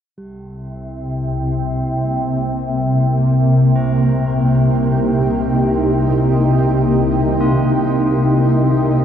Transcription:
0.15 synth drone C2 C3, ambient pad C3, singing bowl G3 G4
1.42 ambient pad A#3
3.22 ambient pad G4
3.76 tubular bells C4
4.09 ambient pad D#4
7.41 tubular bells F4

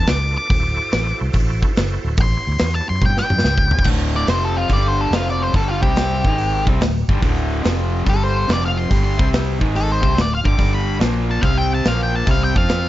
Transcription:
Already playing: tonewheel organ D4 F4 A4 B4
0.06 fingered electric bass C#2, lead electric guitar D6, snare, open hi-hat
0.38 lead electric guitar D6
0.49 fingered electric bass D1, tonewheel organ E4 F#4 A4 C5, kick, open hi-hat
0.92 fingered electric bass A1, snare, open hi-hat
1.21 fingered electric bass C2
1.33 fingered electric bass A1, kick, open hi-hat
1.62 kick
1.76 fingered electric bass F#1, snare, open hi-hat
2.05 fingered electric bass D1
2.17 fingered electric bass A1, tonewheel organ B3 E4 G4 C#5, kick, open hi-hat
2.21 lead electric guitar C6
2.47 fingered electric bass D2
2.58 fingered electric bass E2, snare, open hi-hat
2.75 lead electric guitar A5
2.89 fingered electric bass F#2, lead electric guitar C6
3.02 fingered electric bass G2, lead electric guitar G5, kick, high tom
3.17 lead electric guitar G5, snare
3.30 fingered electric bass F#2, mid tom
3.39 snare
3.44 fingered electric bass C#2, snare
3.58 kick
3.71 floor tom
3.79 kick
3.84 fingered electric bass D1, distorted electric guitar D2 A2 D3, kick, crash
4.16 lead electric guitar D5
4.27 fingered electric bass F1, distorted electric guitar F2 C3 F3, lead electric guitar C5, snare, open hi-hat
4.45 lead electric guitar A4
4.57 lead electric guitar F4
4.69 fingered electric bass G1, distorted electric guitar G2 D3 G3, lead electric guitar D5, kick, open hi-hat
4.88 lead electric guitar C5
5.01 lead electric guitar A4
5.11 fingered electric bass F1, distorted electric guitar F2 C3 F3, lead electric guitar F4, snare, open hi-hat
5.30 lead electric guitar D5
5.42 lead electric guitar C5
5.53 fingered electric bass G1, distorted electric guitar G2 D3 G3, lead electric guitar A4, kick, open hi-hat
5.68 lead electric guitar F4
5.82 fingered electric bass C2, distorted electric guitar C3 G3 C4, lead electric guitar G4, kick
5.96 snare, open hi-hat
6.25 fingered electric bass G#1, distorted electric guitar G#2 D#3 G#3, kick
6.38 open hi-hat
6.66 fingered electric bass C2, distorted electric guitar C3 G3 C4, kick
6.81 fingered electric bass D1, distorted electric guitar D2 A2, snare, open hi-hat
7.08 fingered electric bass G1, distorted electric guitar G2 D3 G3, kick
7.22 fingered electric bass D1, distorted electric guitar D2 A2 D3, kick, open hi-hat
7.64 fingered electric bass F1, distorted electric guitar F2 C3 F3, snare, open hi-hat
8.06 fingered electric bass G1, distorted electric guitar G2 D3 G3, lead electric guitar A4, kick, open hi-hat
8.23 lead electric guitar C5
8.48 fingered electric bass F1, distorted electric guitar F2 C3 F3, snare, open hi-hat
8.53 lead electric guitar D5
8.66 lead electric guitar F5
8.78 lead electric guitar C6
8.90 fingered electric bass G1, distorted electric guitar G2 D3 G3, kick, open hi-hat
9.04 lead electric guitar C6
9.19 fingered electric bass C2, distorted electric guitar C3 G3 C4, kick
9.33 snare, open hi-hat
9.59 fingered electric bass G#1, distorted electric guitar G#2 D#3 G#3, kick
9.75 lead electric guitar A4, open hi-hat
9.92 lead electric guitar C5
10.02 fingered electric bass C2, distorted electric guitar C3 G3 C4, kick
10.16 fingered electric bass D1, distorted electric guitar D2 A2, snare, open hi-hat
10.21 lead electric guitar D5
10.35 lead electric guitar F5
10.44 fingered electric bass G1, distorted electric guitar G2 D3 G3, lead electric guitar D6, kick
10.58 fingered electric bass G1, distorted electric guitar G2 D3 G3, kick, open hi-hat
10.75 lead electric guitar B5
11.00 fingered electric bass A#1, distorted electric guitar A#2 F3 A#3, snare, open hi-hat
11.31 lead electric guitar A5
11.42 fingered electric bass C2, distorted electric guitar C3 G3 C4, lead electric guitar F5, kick, open hi-hat
11.58 lead electric guitar G5
11.75 lead electric guitar A5
11.85 fingered electric bass A#1, distorted electric guitar A#2 F3 A#3, lead electric guitar F5, snare, open hi-hat
12.03 lead electric guitar G5
12.16 lead electric guitar A5
12.27 fingered electric bass C2, distorted electric guitar C3 G3 C4, kick, open hi-hat
12.31 lead electric guitar F5
12.44 lead electric guitar G5
12.55 fingered electric bass F2, distorted electric guitar F3 C4 F4, lead electric guitar F5, kick
12.69 snare, open hi-hat

